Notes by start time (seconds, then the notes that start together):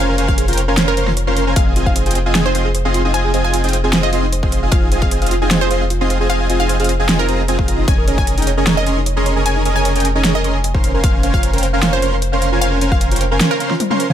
Already playing: F1
0.00 C#4 A#4 C5 F5 G#5
0.09 A#4
0.18 C#4 A#4 C5 F5 G#5, closed hi-hat
0.28 F5, kick
0.38 G#4, closed hi-hat
0.48 C#4 F4 A#4 C5 F5 G5, closed hi-hat
0.53 closed hi-hat
0.58 C5, closed hi-hat
0.68 C#4 A#4 C5 F5 G#5
0.77 C#4 A#4 C5 F5 G#5, snare, closed hi-hat
0.88 A#4
0.97 C#4 A#4 C5 F5 C6, closed hi-hat
1.08 F4, snare
1.17 C#5, closed hi-hat
1.27 C#4 F4 A#4 C5 F5 C6
1.37 A#4, closed hi-hat
1.47 C#4 A#4 C5 F5 G#5
1.56 F1 C4 G#4 D#5 F5, kick, closed hi-hat
1.67 F5
1.76 C4 F4 G#4 D#5 G#5, closed hi-hat
1.86 D#4 F5, kick
1.96 C5, closed hi-hat
2.06 C4 F4 G#4 D#5 G5, closed hi-hat
2.11 closed hi-hat
2.15 C5, closed hi-hat
2.26 C4 F4 G#4 D#5 F5 G#5
2.35 C4 F4 G#4 D#5 G#5, snare, closed hi-hat
2.46 D#4 C5
2.55 C4 F4 G#4 C5 D#5 C6, closed hi-hat
2.65 G#4
2.75 C5, closed hi-hat
2.85 C4 F4 G#4 D#5 F5 C6
2.94 F4, closed hi-hat
3.05 C4 D#4 F4 G#4 D#5 G#5
3.14 C4 F4 G#4 C5 D#5 G#5, closed hi-hat
3.25 G#4
3.34 C4 F4 G#4 C5 D#5 G#5, closed hi-hat
3.44 F5 G#5
3.54 F4, closed hi-hat
3.64 C4 D#4 F4 G#4 D#5 G5, closed hi-hat
3.69 closed hi-hat
3.73 C5, closed hi-hat
3.84 C4 F4 G#4 D#5 G#5
3.93 C4 F4 G#4 C5 D#5 G#5, snare, closed hi-hat
4.03 D#5 F5
4.13 C4 F4 G#4 D#5 C6, closed hi-hat
4.23 D#4
4.33 C5, closed hi-hat
4.43 C4 F4 G#4 D#5 C6, kick
4.52 C5, closed hi-hat
4.63 C4 F4 G#4 D#5 F5 G#5
4.72 F1 C4 F4 G#4 D#5 F5 G#5, kick, closed hi-hat
4.83 D#4
4.92 C4 F4 G#4 C5 D#5 G#5, closed hi-hat
5.02 G#4 F5, kick
5.11 C5, closed hi-hat
5.22 C4 F4 G#4 D#5 F5, closed hi-hat
5.26 closed hi-hat
5.31 F4, closed hi-hat
5.42 C4 D#4 F4 G#4 D#5 G#5
5.51 C4 F4 G#4 C5 D#5 G#5, snare, closed hi-hat
5.61 G#4 C5
5.71 C4 F4 G#4 C5 D#5 C6, closed hi-hat
5.81 F5
5.90 F4, closed hi-hat
6.01 C4 D#4 F4 G#4 D#5 C6
6.10 C5, closed hi-hat
6.21 C4 F4 G#4 D#5 G#5
6.30 C4 F4 G#4 C5 D#5 F5 G#5, closed hi-hat
6.40 F5
6.50 C4 F4 G#4 D#5 G#5, closed hi-hat
6.60 D#4 F5
6.69 C5, closed hi-hat
6.80 C4 F4 G#4 D#5 F5, closed hi-hat
6.84 closed hi-hat
6.89 C5, closed hi-hat
7.00 C4 F4 G#4 D#5 F5 G#5
7.09 C4 F4 G#4 D#5 G#5, snare, closed hi-hat
7.19 D#4 A#4
7.29 C4 F4 G#4 C5 D#5 A#5, closed hi-hat
7.39 G#4
7.48 C4 F4 G#4 C5 D#5 G#5, closed hi-hat
7.59 C4 F4 G#4 D#5 F5, kick
7.68 C4 F4 G#4 D#5 A#5, closed hi-hat
7.79 D#4
7.88 F1 C#4 G#4 A#4 C#5 G#5, kick, closed hi-hat
7.98 A#4
8.08 C#4 G#4 A#4 C#5 D#5 G#5, closed hi-hat
8.18 G#5, kick
8.27 G#5, closed hi-hat
8.38 C#4 D#4 G#4 A#4 D#5 G5, closed hi-hat
8.42 closed hi-hat
8.47 C#5, closed hi-hat
8.57 C#4 G#4 A#4 D#5 G#5
8.67 C#4 G#4 A#4 C#5 D#5 G#5, snare, closed hi-hat
8.77 D#5 G#5
8.86 C#4 G#4 A#4 D#5 G#5 C6, closed hi-hat
8.97 D#4
9.06 C#5, closed hi-hat
9.17 C#4 G#4 A#4 D#5 C6
9.26 C#5, closed hi-hat
9.36 C#4 G#4 A#4 D#5 G#5
9.46 C#4 G#4 A#4 D#5 G#5, closed hi-hat
9.56 D#4
9.65 C#4 G#4 A#4 C#5 D#5 G#5, closed hi-hat
9.76 A#4 G#5
9.85 C#5, closed hi-hat
9.96 C#4 G#4 A#4 D#5 G5 G#5, closed hi-hat
10.00 closed hi-hat
10.05 G#5, closed hi-hat
10.15 C#4 D#4 G#4 A#4 D#5 G#5
10.25 C#4 G#4 A#4 C#5 D#5 G#5, snare, closed hi-hat
10.35 A#4 D#5
10.44 C#4 G#4 A#4 C#5 D#5 C6, closed hi-hat
10.55 G#5
10.64 G#5, closed hi-hat
10.74 C#4 D#4 A#4 C5 F5 C6, kick
10.84 F1 C5, closed hi-hat
10.94 C#4 A#4 C5 F5 G#5
11.04 F5, kick, closed hi-hat
11.14 F5
11.23 C#4 A#4 C5 F5 G#5, closed hi-hat
11.34 F4 F5, kick
11.43 C5, closed hi-hat
11.53 C#4 A#4 C5 F5 G5, closed hi-hat
11.58 closed hi-hat
11.63 C5, closed hi-hat
11.73 C#4 A#4 C5 F5 G#5
11.83 C#4 A#4 C5 F5 G#5, snare, closed hi-hat
11.93 F4 C5
12.02 C#4 A#4 C5 F5 C6, closed hi-hat
12.13 A#4
12.22 C5, closed hi-hat
12.32 C#4 A#4 C5 F5 C6
12.42 F5, closed hi-hat
12.52 C#4 F4 A#4 C5 F5 G#5
12.61 C#4 A#4 C5 F5 G#5, closed hi-hat
12.72 A#4
12.81 C#4 A#4 C5 F5 G#5, closed hi-hat
12.92 F5, kick
13.01 F5, closed hi-hat
13.11 C#4 F4 A#4 C5 F5 G5, closed hi-hat
13.16 closed hi-hat
13.21 C5, closed hi-hat
13.31 C#4 A#4 C5 F5 G#5
13.41 C#4 A#4 C5 F5 G#5, snare, closed hi-hat
13.51 A#4 F5
13.60 C#4 A#4 C5 F5 C6, closed hi-hat
13.71 F4, snare
13.80 C5, closed hi-hat, high tom
13.90 C#4 A#4 C5 F5 C6, high tom
14.00 C5, closed hi-hat